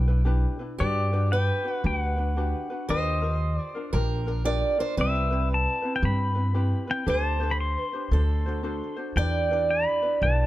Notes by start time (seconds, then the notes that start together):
Already playing: B1 G5
0.07 D4 E4 B4
0.25 D4 E4 G4 B4
0.59 D4 E4 B4
0.78 G2 D4 F#4 G4 B4 D5
1.13 D4 F#4 G4 B4
1.32 B4 G5
1.64 D4 F#4 B4
1.72 F#5
1.84 D2 D4 F#4 G4 B4 G5
1.98 F#5
2.17 D4 F#4 B4
2.37 D4 F#4 G4 B4
2.70 D4 F#4 B4
2.88 D#2 D4 F4 G4 A#4 C5 D#5
3.21 F4 G4 A#4
3.56 D5
3.75 D4 F4 A#4
3.93 A#1 D4 F4 G4 A#4
4.26 D4 F4 A#4
4.45 D4 F4 G4 A#4 D5
4.78 D4 F4 A#4 C5
4.97 C2 C4 E4 G4 B4 E5
5.31 C4 E4 G4 B4
5.54 A5
5.82 C4 E4 B4
5.96 G5
6.02 G2 C4 E4 G4 B4 B5
6.35 C4 E4 B4
6.54 C4 E4 G4 B4
6.87 C4 E4 B4 G5
7.06 D2 D4 G4 A4 C5 G#5
7.27 A5
7.40 D4 G4 A4 C5
7.51 B5
7.60 C6
7.80 B4
7.93 D4 G4 C5
8.11 D2 D4 F#4 A4 C5
8.46 D4 F#4 C5
8.63 D4 F#4 A4 C5
8.96 D4 F#4 C5
9.16 E2 D4 E4 G4 B4 D5 G5
9.51 D4 E4 G4 B4
9.70 B5
10.02 D4 E4 B4
10.22 B1 D4 E4 G4 B4 A5